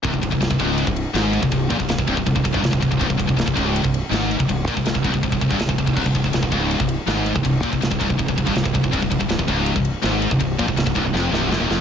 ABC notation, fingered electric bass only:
X:1
M:4/4
L:1/16
Q:1/4=162
K:Ab
V:1 name="Fingered electric bass" clef=bass
C,,, C,,, C,,, C,,, C,,, C,,, D,,,3 C,,,2 z A,,,3 C,,, | C,,,2 B,,, C,,, C,,, C,,, C,,, C,,, C,,, C,,, C,,, G,,, C,,, C,,, C,,, C,,, | C,,, C,,, C,,, C,,, C,,, C,,, D,,,3 C,,,2 z A,,,3 C,,, | C,,,2 B,,, C,,, C,,, C,,, C,,, C,,, C,,, C,,, C,,, G,,, C,,, C,,, C,,, C,,, |
C,,, C,,, C,,, C,,, C,,, C,,, D,,,3 C,,,2 z A,,,3 C,,, | C,,,2 B,,, C,,, C,,, C,,, C,,, C,,, C,,, C,,, C,,, G,,, C,,, C,,, C,,, C,,, | C,,, C,,, C,,, C,,, C,,, C,,, D,,,3 C,,,2 z A,,,3 C,,, | C,,,2 B,,, C,,, C,,, C,,, C,,, C,,, F,,,2 C,,,2 ^F,,, E,,, =F,,,2 |]